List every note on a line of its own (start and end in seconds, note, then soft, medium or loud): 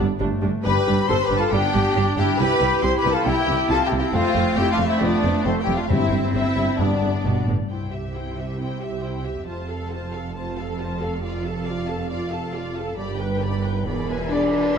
0.00 0.39 G2 medium
0.20 0.29 G1 medium
0.20 0.28 G2 medium
0.20 0.28 G3 medium
0.20 0.68 A3 medium
0.20 0.28 D4 medium
0.42 0.52 G1 medium
0.42 0.51 G2 medium
0.42 0.50 G3 medium
0.42 0.50 D4 medium
0.64 0.73 G1 medium
0.64 0.72 G2 medium
0.64 0.72 G3 medium
0.64 0.80 G3 medium
0.64 1.26 G3 medium
0.64 0.72 D4 medium
0.64 0.81 D4 medium
0.64 1.06 G4 medium
0.64 1.05 B4 loud
0.64 1.06 B5 medium
0.86 0.96 G1 medium
0.86 0.95 G2 medium
0.86 0.95 G3 medium
0.86 0.94 D4 medium
1.08 1.18 G1 medium
1.08 1.18 G2 medium
1.08 1.17 G3 medium
1.08 1.16 D4 medium
1.08 1.15 A4 medium
1.08 1.23 C5 loud
1.08 1.23 C6 loud
1.08 1.24 C6 loud
1.23 1.38 G4 medium
1.23 1.38 B4 loud
1.23 1.38 B5 medium
1.29 1.38 G1 medium
1.29 1.38 G2 medium
1.29 1.37 G3 medium
1.29 1.38 D4 medium
1.37 1.52 F4 medium
1.37 1.52 A4 medium
1.37 1.43 A5 medium
1.37 1.52 A5 medium
1.51 1.60 G1 medium
1.51 1.61 G2 medium
1.51 1.60 G3 medium
1.51 1.68 G3 medium
1.51 1.60 D4 medium
1.51 2.18 D4 medium
1.51 1.68 D4 medium
1.51 2.16 G4 loud
1.51 2.16 G5 medium
1.51 2.15 G5 medium
1.55 1.99 B3 medium
1.74 1.83 G1 medium
1.74 1.82 G2 medium
1.74 1.82 G3 medium
1.74 1.82 D4 medium
1.95 2.04 G1 medium
1.95 2.04 G2 medium
1.95 2.03 G3 medium
1.95 2.04 D4 medium
1.95 2.42 D4 medium
2.16 2.25 G1 medium
2.16 2.26 G2 medium
2.16 2.27 G3 medium
2.16 2.26 D4 medium
2.16 2.39 E4 medium
2.16 2.39 G4 loud
2.16 2.22 G5 medium
2.16 2.25 G5 medium
2.37 2.47 C2 medium
2.37 2.47 C3 medium
2.37 2.48 G3 medium
2.37 2.55 G3 medium
2.37 2.54 E4 medium
2.37 2.48 E4 medium
2.37 2.83 E4 medium
2.37 2.83 G4 loud
2.37 2.83 B4 loud
2.37 2.81 B5 loud
2.37 2.83 B5 loud
2.60 2.69 C2 medium
2.60 2.68 C3 medium
2.60 2.69 G3 medium
2.60 2.70 E4 medium
2.81 2.91 C2 medium
2.81 2.90 C3 medium
2.81 2.91 G3 medium
2.81 2.91 E4 medium
2.81 3.69 E4 medium
2.81 2.97 G4 medium
2.81 2.98 C5 loud
2.81 2.96 C6 medium
2.81 2.97 C6 loud
2.97 3.12 G4 loud
2.97 3.12 B4 loud
2.97 3.12 B5 medium
3.04 3.13 C2 medium
3.04 3.12 C3 medium
3.04 3.13 G3 medium
3.04 3.13 E4 medium
3.11 3.27 F4 medium
3.11 3.27 A4 medium
3.11 3.26 A5 medium
3.25 3.35 C2 medium
3.25 3.33 C3 medium
3.25 3.41 G3 medium
3.25 3.34 G3 medium
3.25 3.34 E4 medium
3.25 3.41 E4 medium
3.25 3.70 E4 loud
3.25 3.70 G4 loud
3.25 3.68 G5 medium
3.25 3.69 G5 medium
3.47 3.56 C2 medium
3.47 3.55 C3 medium
3.47 3.56 G3 medium
3.47 3.56 E4 medium
3.68 3.77 C2 medium
3.68 3.76 C3 medium
3.68 3.78 G3 medium
3.68 3.78 E4 medium
3.68 3.85 F4 loud
3.68 3.76 A4 loud
3.68 3.84 A5 loud
3.73 4.16 C4 medium
3.84 3.98 E4 medium
3.84 3.91 G4 medium
3.84 3.99 G5 medium
3.84 3.97 G5 medium
3.91 3.99 C2 medium
3.91 3.99 C3 medium
3.91 4.00 G3 medium
3.91 3.99 E4 medium
3.98 4.13 E4 medium
3.98 4.05 G4 loud
3.98 4.13 G5 medium
3.98 4.06 G5 medium
4.12 4.20 F1 medium
4.12 4.21 F2 medium
4.12 4.20 A3 medium
4.12 4.29 A3 medium
4.12 5.89 A3 loud
4.12 4.20 C4 medium
4.12 4.56 C4 loud
4.12 4.56 F4 loud
4.12 4.29 F4 medium
4.12 4.57 F5 medium
4.34 4.43 F1 medium
4.34 4.43 F2 medium
4.34 4.42 A3 medium
4.34 4.42 C4 medium
4.57 4.65 F1 medium
4.57 4.65 F2 medium
4.57 4.65 A3 medium
4.57 4.65 C4 medium
4.57 4.72 E4 medium
4.57 4.72 G4 loud
4.57 4.72 G5 loud
4.57 4.73 G5 medium
4.71 4.78 D4 medium
4.71 4.77 F4 medium
4.71 4.87 F5 medium
4.78 4.86 F1 medium
4.78 4.88 F2 medium
4.78 4.87 A3 medium
4.78 4.87 C4 medium
4.86 5.01 C4 medium
4.86 5.01 E4 loud
4.86 5.01 E5 medium
4.86 5.02 E5 medium
5.00 5.09 F1 medium
5.00 5.10 F2 medium
5.00 5.09 A3 medium
5.00 5.18 A3 medium
5.00 5.45 B3 medium
5.00 5.09 C4 medium
5.00 5.45 D4 loud
5.00 5.17 F4 medium
5.00 5.45 D5 medium
5.00 5.47 D5 medium
5.23 5.31 F1 medium
5.23 5.31 F2 medium
5.23 5.31 A3 medium
5.23 5.31 C4 medium
5.44 5.53 F1 medium
5.44 5.53 F2 medium
5.44 5.53 A3 medium
5.44 5.60 A3 medium
5.44 5.54 C4 medium
5.44 5.52 C4 medium
5.44 5.59 C5 medium
5.44 5.60 C5 medium
5.60 5.75 E4 medium
5.60 5.75 G4 medium
5.60 5.66 G5 medium
5.60 5.75 G5 medium
5.67 5.76 F1 medium
5.67 5.75 F2 medium
5.67 5.75 A3 medium
5.67 5.75 C4 medium
5.74 5.81 D4 medium
5.74 5.91 F4 medium
5.74 5.89 F5 medium
5.87 5.97 G1 medium
5.87 5.97 G2 medium
5.87 6.53 G2 medium
5.87 5.97 G3 medium
5.87 5.97 C4 medium
5.87 6.32 C4 medium
5.87 6.81 C4 medium
5.87 6.05 C4 medium
5.87 6.33 E4 medium
5.87 6.06 G4 medium
5.87 6.33 E5 medium
5.87 6.31 E5 medium
6.10 6.18 G1 medium
6.10 6.20 G2 medium
6.10 6.20 G3 medium
6.10 6.20 C4 medium
6.33 6.42 G1 medium
6.33 6.41 G2 medium
6.33 6.42 G3 medium
6.33 6.78 C4 medium
6.33 6.42 C4 medium
6.33 6.78 E4 medium
6.33 6.78 E5 medium
6.56 6.65 G1 medium
6.56 6.65 G2 medium
6.56 6.64 G3 soft
6.56 6.64 C4 soft
6.78 6.88 G1 medium
6.78 7.44 G2 medium
6.78 6.87 G2 medium
6.78 6.87 G3 soft
6.78 6.87 B3 medium
6.78 7.48 B3 medium
6.78 6.96 B3 medium
6.78 7.48 D4 medium
6.78 6.95 G4 medium
6.78 7.46 D5 medium
6.78 7.47 D5 medium
7.01 7.10 G1 medium
7.01 7.09 G2 medium
7.01 7.10 G3 soft
7.01 7.11 B3 soft
7.24 7.33 G1 medium
7.24 7.46 B2 medium
7.24 7.33 G3 medium
7.24 7.33 B3 medium
7.47 7.56 G1 medium
7.47 7.55 A2 medium
7.47 7.56 G3 soft
7.47 7.56 B3 soft
7.69 9.43 C2 soft
7.69 9.42 C3 soft
7.69 7.91 E4 soft
7.69 7.91 C5 soft
7.69 7.91 G5 soft
7.93 8.15 G4 soft
7.93 8.15 E5 soft
8.14 8.37 E4 soft
8.14 8.37 C5 soft
8.14 8.37 G5 soft
8.37 8.59 G4 soft
8.37 8.60 E5 soft
8.59 8.80 E4 soft
8.59 8.81 C5 soft
8.59 8.80 G5 soft
8.81 9.03 G4 soft
8.81 9.03 E5 soft
8.81 9.04 E5 soft
9.03 9.25 E4 soft
9.03 9.25 C5 soft
9.03 9.25 G5 soft
9.24 9.48 G4 soft
9.24 9.47 E5 soft
9.46 12.98 F1 soft
9.46 12.97 F2 soft
9.46 9.68 F4 soft
9.46 9.67 C5 soft
9.46 9.67 A5 soft
9.69 9.91 A4 soft
9.69 9.92 A4 soft
9.69 9.91 F5 soft
9.89 10.13 F4 soft
9.89 10.13 C5 soft
9.89 10.12 A5 soft
10.13 10.36 A4 soft
10.13 10.35 F5 soft
10.35 10.57 F4 soft
10.35 10.56 C5 soft
10.35 10.55 A5 soft
10.58 10.79 A4 soft
10.58 10.80 A4 soft
10.58 10.79 F5 soft
10.79 11.01 F4 soft
10.79 11.01 C5 soft
10.79 11.01 A5 soft
11.01 11.23 A4 soft
11.01 11.22 F5 soft
11.22 11.44 F4 soft
11.22 11.43 D5 soft
11.22 11.43 F5 soft
11.44 11.67 A4 soft
11.44 11.66 F5 soft
11.44 11.66 A5 soft
11.66 11.89 F4 soft
11.66 11.88 D5 soft
11.66 11.88 F5 medium
11.88 12.10 A4 soft
11.88 12.10 F5 soft
11.88 12.10 A5 soft
12.09 12.31 F4 medium
12.09 12.31 D5 soft
12.09 12.30 F5 medium
12.31 12.53 A4 soft
12.31 12.53 F5 soft
12.31 12.54 A5 soft
12.53 12.76 F4 medium
12.53 12.76 D5 soft
12.53 12.76 F5 soft
12.75 12.98 A4 soft
12.75 12.97 F5 soft
12.75 12.98 A5 soft
12.97 13.85 G1 soft
12.97 13.85 G2 medium
12.97 13.18 G4 soft
12.97 13.18 D5 soft
12.97 13.18 B5 medium
13.18 13.42 B4 soft
13.18 13.41 G5 soft
13.41 13.64 G4 soft
13.41 13.65 D5 soft
13.41 13.64 B5 soft
13.64 13.87 B4 soft
13.64 13.87 G5 soft
13.86 14.57 E1 soft
13.86 14.57 E2 soft
13.86 14.08 G#4 soft
13.86 14.08 D5 soft
13.86 14.08 B5 soft
14.09 14.32 B4 soft
14.09 14.33 E5 soft
14.09 14.33 G#5 soft
14.28 14.73 D4 medium
14.28 14.55 G#4 soft
14.28 14.55 D5 medium
14.28 14.75 D5 medium
14.33 14.55 B5 soft
14.55 14.78 B4 soft
14.55 14.78 E5 soft
14.55 14.78 G#5 soft